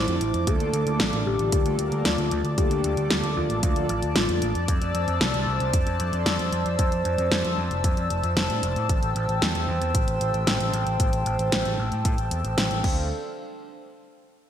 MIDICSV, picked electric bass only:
0, 0, Header, 1, 2, 480
1, 0, Start_track
1, 0, Tempo, 526316
1, 431, Time_signature, 4, 2, 24, 8
1, 13223, End_track
2, 0, Start_track
2, 0, Title_t, "Picked electric bass"
2, 0, Program_c, 0, 34
2, 69, Note_on_c, 0, 41, 69
2, 157, Note_off_c, 0, 41, 0
2, 190, Note_on_c, 0, 33, 91
2, 277, Note_off_c, 0, 33, 0
2, 310, Note_on_c, 0, 41, 80
2, 397, Note_off_c, 0, 41, 0
2, 431, Note_on_c, 0, 38, 100
2, 518, Note_off_c, 0, 38, 0
2, 550, Note_on_c, 0, 38, 76
2, 637, Note_off_c, 0, 38, 0
2, 671, Note_on_c, 0, 38, 96
2, 758, Note_off_c, 0, 38, 0
2, 791, Note_on_c, 0, 38, 87
2, 878, Note_off_c, 0, 38, 0
2, 911, Note_on_c, 0, 33, 98
2, 998, Note_off_c, 0, 33, 0
2, 1031, Note_on_c, 0, 33, 74
2, 1118, Note_off_c, 0, 33, 0
2, 1150, Note_on_c, 0, 33, 98
2, 1237, Note_off_c, 0, 33, 0
2, 1270, Note_on_c, 0, 33, 77
2, 1357, Note_off_c, 0, 33, 0
2, 1392, Note_on_c, 0, 38, 103
2, 1478, Note_off_c, 0, 38, 0
2, 1510, Note_on_c, 0, 38, 74
2, 1597, Note_off_c, 0, 38, 0
2, 1631, Note_on_c, 0, 38, 92
2, 1718, Note_off_c, 0, 38, 0
2, 1750, Note_on_c, 0, 38, 81
2, 1837, Note_off_c, 0, 38, 0
2, 1870, Note_on_c, 0, 38, 98
2, 1957, Note_off_c, 0, 38, 0
2, 1990, Note_on_c, 0, 38, 71
2, 2077, Note_off_c, 0, 38, 0
2, 2110, Note_on_c, 0, 38, 96
2, 2197, Note_off_c, 0, 38, 0
2, 2229, Note_on_c, 0, 38, 79
2, 2316, Note_off_c, 0, 38, 0
2, 2352, Note_on_c, 0, 38, 100
2, 2438, Note_off_c, 0, 38, 0
2, 2470, Note_on_c, 0, 38, 77
2, 2557, Note_off_c, 0, 38, 0
2, 2591, Note_on_c, 0, 38, 96
2, 2678, Note_off_c, 0, 38, 0
2, 2711, Note_on_c, 0, 38, 80
2, 2798, Note_off_c, 0, 38, 0
2, 2830, Note_on_c, 0, 38, 98
2, 2917, Note_off_c, 0, 38, 0
2, 2950, Note_on_c, 0, 38, 74
2, 3037, Note_off_c, 0, 38, 0
2, 3071, Note_on_c, 0, 38, 97
2, 3158, Note_off_c, 0, 38, 0
2, 3190, Note_on_c, 0, 33, 79
2, 3277, Note_off_c, 0, 33, 0
2, 3311, Note_on_c, 0, 38, 104
2, 3398, Note_off_c, 0, 38, 0
2, 3430, Note_on_c, 0, 38, 74
2, 3517, Note_off_c, 0, 38, 0
2, 3551, Note_on_c, 0, 33, 93
2, 3638, Note_off_c, 0, 33, 0
2, 3671, Note_on_c, 0, 38, 83
2, 3758, Note_off_c, 0, 38, 0
2, 3789, Note_on_c, 0, 33, 94
2, 3877, Note_off_c, 0, 33, 0
2, 3910, Note_on_c, 0, 41, 73
2, 3997, Note_off_c, 0, 41, 0
2, 4030, Note_on_c, 0, 33, 92
2, 4117, Note_off_c, 0, 33, 0
2, 4149, Note_on_c, 0, 41, 77
2, 4237, Note_off_c, 0, 41, 0
2, 4272, Note_on_c, 0, 41, 102
2, 4358, Note_off_c, 0, 41, 0
2, 4392, Note_on_c, 0, 41, 79
2, 4478, Note_off_c, 0, 41, 0
2, 4510, Note_on_c, 0, 41, 92
2, 4597, Note_off_c, 0, 41, 0
2, 4631, Note_on_c, 0, 41, 81
2, 4718, Note_off_c, 0, 41, 0
2, 4751, Note_on_c, 0, 36, 103
2, 4838, Note_off_c, 0, 36, 0
2, 4871, Note_on_c, 0, 36, 77
2, 4957, Note_off_c, 0, 36, 0
2, 4991, Note_on_c, 0, 36, 96
2, 5078, Note_off_c, 0, 36, 0
2, 5112, Note_on_c, 0, 36, 78
2, 5198, Note_off_c, 0, 36, 0
2, 5232, Note_on_c, 0, 41, 103
2, 5318, Note_off_c, 0, 41, 0
2, 5353, Note_on_c, 0, 41, 75
2, 5438, Note_off_c, 0, 41, 0
2, 5471, Note_on_c, 0, 41, 91
2, 5558, Note_off_c, 0, 41, 0
2, 5591, Note_on_c, 0, 41, 83
2, 5678, Note_off_c, 0, 41, 0
2, 5711, Note_on_c, 0, 41, 104
2, 5798, Note_off_c, 0, 41, 0
2, 5831, Note_on_c, 0, 41, 71
2, 5918, Note_off_c, 0, 41, 0
2, 5951, Note_on_c, 0, 41, 94
2, 6038, Note_off_c, 0, 41, 0
2, 6070, Note_on_c, 0, 41, 77
2, 6157, Note_off_c, 0, 41, 0
2, 6192, Note_on_c, 0, 41, 99
2, 6278, Note_off_c, 0, 41, 0
2, 6310, Note_on_c, 0, 41, 75
2, 6397, Note_off_c, 0, 41, 0
2, 6430, Note_on_c, 0, 41, 92
2, 6517, Note_off_c, 0, 41, 0
2, 6550, Note_on_c, 0, 41, 82
2, 6637, Note_off_c, 0, 41, 0
2, 6671, Note_on_c, 0, 41, 99
2, 6758, Note_off_c, 0, 41, 0
2, 6792, Note_on_c, 0, 41, 76
2, 6878, Note_off_c, 0, 41, 0
2, 6911, Note_on_c, 0, 41, 98
2, 6998, Note_off_c, 0, 41, 0
2, 7033, Note_on_c, 0, 29, 81
2, 7119, Note_off_c, 0, 29, 0
2, 7152, Note_on_c, 0, 41, 102
2, 7238, Note_off_c, 0, 41, 0
2, 7273, Note_on_c, 0, 41, 76
2, 7358, Note_off_c, 0, 41, 0
2, 7393, Note_on_c, 0, 29, 94
2, 7479, Note_off_c, 0, 29, 0
2, 7513, Note_on_c, 0, 41, 84
2, 7599, Note_off_c, 0, 41, 0
2, 7633, Note_on_c, 0, 29, 98
2, 7719, Note_off_c, 0, 29, 0
2, 7753, Note_on_c, 0, 45, 71
2, 7839, Note_off_c, 0, 45, 0
2, 7873, Note_on_c, 0, 29, 98
2, 7959, Note_off_c, 0, 29, 0
2, 7993, Note_on_c, 0, 45, 81
2, 8078, Note_off_c, 0, 45, 0
2, 8112, Note_on_c, 0, 33, 104
2, 8198, Note_off_c, 0, 33, 0
2, 8231, Note_on_c, 0, 33, 77
2, 8318, Note_off_c, 0, 33, 0
2, 8351, Note_on_c, 0, 33, 92
2, 8438, Note_off_c, 0, 33, 0
2, 8471, Note_on_c, 0, 33, 83
2, 8558, Note_off_c, 0, 33, 0
2, 8592, Note_on_c, 0, 40, 96
2, 8678, Note_off_c, 0, 40, 0
2, 8711, Note_on_c, 0, 40, 76
2, 8798, Note_off_c, 0, 40, 0
2, 8831, Note_on_c, 0, 40, 99
2, 8917, Note_off_c, 0, 40, 0
2, 8951, Note_on_c, 0, 40, 76
2, 9038, Note_off_c, 0, 40, 0
2, 9071, Note_on_c, 0, 33, 102
2, 9158, Note_off_c, 0, 33, 0
2, 9191, Note_on_c, 0, 33, 74
2, 9278, Note_off_c, 0, 33, 0
2, 9311, Note_on_c, 0, 33, 91
2, 9398, Note_off_c, 0, 33, 0
2, 9430, Note_on_c, 0, 33, 83
2, 9517, Note_off_c, 0, 33, 0
2, 9549, Note_on_c, 0, 33, 101
2, 9637, Note_off_c, 0, 33, 0
2, 9670, Note_on_c, 0, 33, 72
2, 9757, Note_off_c, 0, 33, 0
2, 9790, Note_on_c, 0, 33, 96
2, 9877, Note_off_c, 0, 33, 0
2, 9910, Note_on_c, 0, 33, 79
2, 9997, Note_off_c, 0, 33, 0
2, 10031, Note_on_c, 0, 33, 100
2, 10118, Note_off_c, 0, 33, 0
2, 10149, Note_on_c, 0, 33, 77
2, 10237, Note_off_c, 0, 33, 0
2, 10269, Note_on_c, 0, 33, 91
2, 10357, Note_off_c, 0, 33, 0
2, 10390, Note_on_c, 0, 33, 82
2, 10477, Note_off_c, 0, 33, 0
2, 10510, Note_on_c, 0, 33, 98
2, 10597, Note_off_c, 0, 33, 0
2, 10630, Note_on_c, 0, 33, 75
2, 10717, Note_off_c, 0, 33, 0
2, 10749, Note_on_c, 0, 33, 100
2, 10837, Note_off_c, 0, 33, 0
2, 10870, Note_on_c, 0, 45, 79
2, 10957, Note_off_c, 0, 45, 0
2, 10991, Note_on_c, 0, 45, 105
2, 11078, Note_off_c, 0, 45, 0
2, 11110, Note_on_c, 0, 33, 75
2, 11197, Note_off_c, 0, 33, 0
2, 11231, Note_on_c, 0, 40, 89
2, 11318, Note_off_c, 0, 40, 0
2, 11350, Note_on_c, 0, 33, 84
2, 11437, Note_off_c, 0, 33, 0
2, 11470, Note_on_c, 0, 33, 99
2, 11557, Note_off_c, 0, 33, 0
2, 11590, Note_on_c, 0, 33, 70
2, 11677, Note_off_c, 0, 33, 0
2, 11711, Note_on_c, 0, 38, 98
2, 11935, Note_off_c, 0, 38, 0
2, 13223, End_track
0, 0, End_of_file